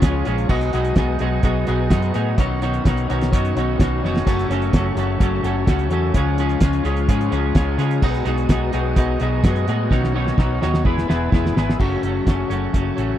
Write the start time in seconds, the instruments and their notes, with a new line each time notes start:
Already playing: tonewheel organ F4 C#5 G#5 C#6
0.01 fingered electric bass C#2, clean electric guitar C#3 F3 G#3 C#4 F4 G#4 C#5, kick, snare, closed hi-hat
0.25 fingered electric bass A#1, clean electric guitar C#3 F3 G#3 C#4 F4 G#4 C#5, closed hi-hat
0.38 closed hi-hat
0.49 fingered electric bass B1, clean electric guitar B2 F#3 G#3 B3 D#4 F#4 G#4 D#5, tonewheel organ F#4 B4 D#6, kick, crash
0.61 closed hi-hat
0.73 fingered electric bass B1, clean electric guitar B2 F#3 G#3 B3 D#4 F#4 G#4 D#5, closed hi-hat
0.84 closed hi-hat
0.95 fingered electric bass B1, clean electric guitar B2 F#3 G#3 B3 D#4 F#4 G#4 D#5, kick, snare, closed hi-hat
1.19 fingered electric bass B1, clean electric guitar B2 F#3 G#3 B3 D#4 F#4 G#4 D#5, closed hi-hat
1.43 fingered electric bass B1, clean electric guitar B2 F#3 G#3 B3 D#4 F#4 G#4 D#5, kick, closed hi-hat
1.67 fingered electric bass B1, clean electric guitar B2 F#3 G#3 B3 D#4 F#4 G#4 D#5, snare, closed hi-hat
1.90 fingered electric bass F#2, clean electric guitar B2 F#3 G#3 B3 D#4 F#4 G#4 D#5, kick, snare, closed hi-hat
2.02 closed hi-hat
2.14 fingered electric bass A2, clean electric guitar B2 F#3 G#3 B3 D#4 F#4 G#4 D#5, closed hi-hat
2.38 fingered electric bass B1, clean electric guitar B2 D#3 F#3 B3 C#4 D#4 F#4 C#5, tonewheel organ C#5 B5, kick, closed hi-hat
2.62 clean electric guitar B2 D#3 F#3 B3 C#4 D#4 F#4 C#5, closed hi-hat
2.73 closed hi-hat
2.85 fingered electric bass B1, clean electric guitar B2 D#3 F#3 B3 C#4 D#4 F#4 C#5, kick, snare, closed hi-hat
2.97 closed hi-hat
3.08 fingered electric bass B1, clean electric guitar B2 D#3 F#3 B3 C#4 D#4 F#4 C#5, closed hi-hat
3.21 snare, closed hi-hat
3.32 fingered electric bass F#2, clean electric guitar B2 D#3 F#3 B3 C#4 D#4 F#4 C#5, kick, closed hi-hat
3.36 clean electric guitar D#4
3.45 closed hi-hat
3.56 fingered electric bass B1, clean electric guitar B2 D#3 F#3 B3 C#4 D#4 F#4 C#5, closed hi-hat
3.79 fingered electric bass B1, clean electric guitar B2 D#3 F#3 B3 C#4 D#4 F#4 C#5, kick, snare, closed hi-hat
3.83 clean electric guitar D#4
4.03 fingered electric bass F1, clean electric guitar B2 D#3 F#3 B3 C#4 D#4 F#4 C#5, snare
4.17 snare
4.24 fingered electric bass F#1, clean electric guitar F#2 C#3 F#3 A3 C#4 F#4 A4 C#5, tonewheel organ F#4 A5 C#6, kick, closed hi-hat, crash
4.29 clean electric guitar C#4
4.39 closed hi-hat
4.49 fingered electric bass F#1, clean electric guitar F#2 C#3 F#3 A3 C#4 F#4 A4 C#5, closed hi-hat
4.62 closed hi-hat
4.73 fingered electric bass F#1, clean electric guitar F#2 C#3 F#3 A3 C#4 F#4 A4 C#5, kick, snare, closed hi-hat
4.95 fingered electric bass F#1, clean electric guitar F#2 C#3 F#3 C#4 F#4 A4 C#5, closed hi-hat
4.99 clean electric guitar A3 C#4
5.20 fingered electric bass F#1, clean electric guitar F#2 C#3 F#3 A3 C#4 F#4 A4 C#5, kick, closed hi-hat
5.43 fingered electric bass F#1, clean electric guitar F#2 C#3 F#3 A3 C#4 F#4 A4 C#5, closed hi-hat
5.67 fingered electric bass C#2, clean electric guitar F#2 C#3 F#3 A3 C#4 F#4 A4 C#5, kick, snare, closed hi-hat
5.79 closed hi-hat
5.90 fingered electric bass E2, clean electric guitar F#2 C#3 F#3 A3 C#4 F#4 A4 C#5, closed hi-hat
6.14 fingered electric bass C#2, clean electric guitar C#3 F3 G#3 C#4 F4 G#4 C#5, tonewheel organ F4 G#5, kick, closed hi-hat
6.38 clean electric guitar C#3 F3 G#3 C#4 F4 G#4 C#5, closed hi-hat
6.49 closed hi-hat
6.61 fingered electric bass C#2, clean electric guitar C#3 F3 G#3 C#4 F4 G#4 C#5, kick, snare, closed hi-hat
6.73 closed hi-hat
6.84 fingered electric bass C#2, clean electric guitar C#3 F3 G#3 C#4 F4 G#4 C#5, closed hi-hat
6.97 closed hi-hat
7.08 fingered electric bass G#2, clean electric guitar C#3 F3 G#3 C#4 F4 G#4 C#5, kick, closed hi-hat
7.21 closed hi-hat
7.30 fingered electric bass C#2, clean electric guitar C#3 F3 G#3 C#4 F4 G#4 C#5, closed hi-hat
7.55 fingered electric bass C#2, clean electric guitar C#3 F3 G#3 C#4 F4 G#4 C#5, kick, snare, closed hi-hat
7.78 clean electric guitar C#3 F3 G#3 C#4 F4 G#4 C#5, fingered electric bass C#3, closed hi-hat
7.91 closed hi-hat
8.02 fingered electric bass B1, clean electric guitar B2 F#3 G#3 B3 D#4 F#4 G#4 D#5, tonewheel organ F#4 B4 D#6, kick, crash
8.14 closed hi-hat
8.25 fingered electric bass B1, clean electric guitar B2 F#3 G#3 B3 D#4 F#4 G#4 D#5, closed hi-hat
8.38 closed hi-hat
8.49 clean electric guitar B2 F#3 G#3 B3 D#4 F#4 G#4 D#5, kick, snare, closed hi-hat
8.72 fingered electric bass B1, clean electric guitar B2 F#3 G#3 B3 D#4 F#4 G#4 D#5, closed hi-hat
8.96 fingered electric bass B1, clean electric guitar B2 F#3 G#3 B3 D#4 F#4 G#4 D#5, kick, closed hi-hat
9.20 fingered electric bass B1, clean electric guitar B2 F#3 G#3 B3 D#4 F#4 G#4 D#5, closed hi-hat
9.44 fingered electric bass F#2, clean electric guitar B2 F#3 G#3 B3 D#4 F#4 G#4 D#5, kick, snare, closed hi-hat
9.56 closed hi-hat
9.68 fingered electric bass A2, clean electric guitar B2 F#3 G#3 B3 D#4 F#4 G#4 D#5, closed hi-hat
9.90 fingered electric bass B1, clean electric guitar B2 D#3 F#3 B3 C#4 D#4 F#4 C#5, tonewheel organ C#5 B5, kick, snare
10.04 snare
10.14 clean electric guitar B2 D#3 F#3 B3 C#4 D#4 F#4 C#5
10.27 snare
10.37 fingered electric bass B1, clean electric guitar B2 D#3 F#3 B3 C#4 D#4 F#4 C#5, kick, snare
10.62 fingered electric bass D#2, clean electric guitar B2 D#3 F#3 B3 C#4 D#4 F#4 C#5, snare
10.74 snare
10.84 fingered electric bass E1, clean electric guitar E3 G#3 B3 E4 G#4 B4, tonewheel organ G#4 E5 B5 E6, kick
10.98 snare
11.08 fingered electric bass E1, clean electric guitar E3 G#3 B3 E4 G#4 B4, snare
11.31 fingered electric bass E1, clean electric guitar E3 G#3 B3 E4 G#4 B4, kick, snare
11.36 clean electric guitar E4
11.46 snare
11.55 fingered electric bass G#1, clean electric guitar E3 G#3 B3 E4 G#4 B4, snare
11.69 snare
11.78 fingered electric bass F#1, clean electric guitar F#2 C#3 F#3 A3 C#4 F#4 A4 C#5, tonewheel organ F#4 C#5 A5 C#6, kick, crash
11.83 clean electric guitar C#4
12.02 fingered electric bass F#1, clean electric guitar A3 C#4 F#4 A4 C#5, closed hi-hat
12.07 clean electric guitar F#3
12.26 fingered electric bass F#1, clean electric guitar C#3 F#3 A3 C#4 F#4 A4 C#5, kick, snare, closed hi-hat
12.50 fingered electric bass F#1, clean electric guitar F#2 C#3 F#3 A3 C#4 F#4 A4 C#5, closed hi-hat
12.73 fingered electric bass F#1, clean electric guitar C#3 F#3 A3 C#4, kick, closed hi-hat
12.97 fingered electric bass A1, clean electric guitar F#2 C#3 F#3 A3 C#4, closed hi-hat